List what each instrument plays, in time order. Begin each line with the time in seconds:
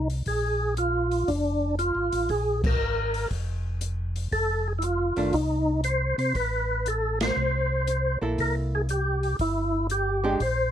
Already playing: tonewheel organ C2
0.10 open hi-hat
0.26 tonewheel organ A#1 G#4, kick, open hi-hat
0.77 tonewheel organ F4, closed hi-hat
1.11 open hi-hat
1.28 tonewheel organ F1 D4, kick, open hi-hat
1.79 tonewheel organ F4, closed hi-hat
1.95 tonewheel organ G#1
2.12 tonewheel organ A1, open hi-hat
2.29 tonewheel organ A#1 G#4, kick, open hi-hat
2.64 tonewheel organ A#4, kick, crash
2.79 tonewheel organ G#1
3.14 open hi-hat
3.31 tonewheel organ F1, kick, open hi-hat
3.81 closed hi-hat
4.16 open hi-hat
4.32 tonewheel organ F1 A4, kick, open hi-hat
4.68 tonewheel organ G#4
4.79 tonewheel organ E4, closed hi-hat
4.84 tonewheel organ F4
5.16 tonewheel organ F#1, hollow-body jazz guitar D#3 A3 D4, open hi-hat
5.33 tonewheel organ C2 D#4, kick, open hi-hat
5.84 tonewheel organ C5, closed hi-hat
6.18 tonewheel organ C3 C5, open hi-hat
6.35 tonewheel organ A1 B4, kick, open hi-hat
6.86 tonewheel organ A4, closed hi-hat
7.21 tonewheel organ C5, snare, ride
7.36 tonewheel organ C2
7.87 closed hi-hat
8.22 tonewheel organ A#1, hollow-body jazz guitar A#3 E4 A4
8.38 tonewheel organ C2 A#4, kick, open hi-hat
8.75 tonewheel organ G#4
8.89 tonewheel organ G4, closed hi-hat
9.23 open hi-hat
9.39 tonewheel organ G1 E4, kick, open hi-hat
9.90 tonewheel organ G4, closed hi-hat
10.24 hollow-body jazz guitar G#3 D4 G4
10.40 tonewheel organ A#1 C5, kick, open hi-hat